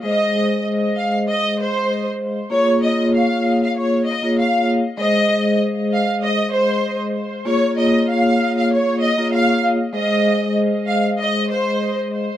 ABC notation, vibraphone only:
X:1
M:4/4
L:1/16
Q:"Swing 16ths" 1/4=97
K:Abmix
V:1 name="Vibraphone"
[A,Ace]2 [A,Ace]12- [A,Ace] z | [B,FAd]2 [B,FAd]8 z [B,FAd]4 z | [A,Ace]2 [A,Ace]12- [A,Ace] z | [B,FAd]2 [B,FAd]8 z [B,FAd]4 z |
[A,Ace]2 [A,Ace]12- [A,Ace] z |]